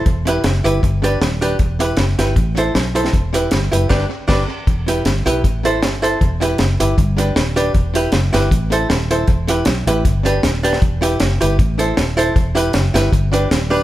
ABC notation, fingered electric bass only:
X:1
M:4/4
L:1/8
Q:"Swing" 1/4=156
K:Em
V:1 name="Fingered electric bass" clef=bass
E,,,2 F,,, G,,, G,,,2 ^D,,,2 | E,,,2 F,,, G,,, A,,,2 B,,,2 | E,,,2 G,,, F,,, G,,, z G,,, z | E,,,2 G,,, B,,, A,,,2 G,,,2 |
E,,,2 F,,, G,,, G,,,2 ^D,,,2 | E,,,2 F,,, G,,, A,,,2 ^D,,,2 | E,,,2 B,,, A,,, G,,,2 ^D,,,2 | E,,,2 F,,, G,,, A,,,2 ^D,,,2 |
E,,,2 F,,, G,,, G,,,2 ^D,,,2 |]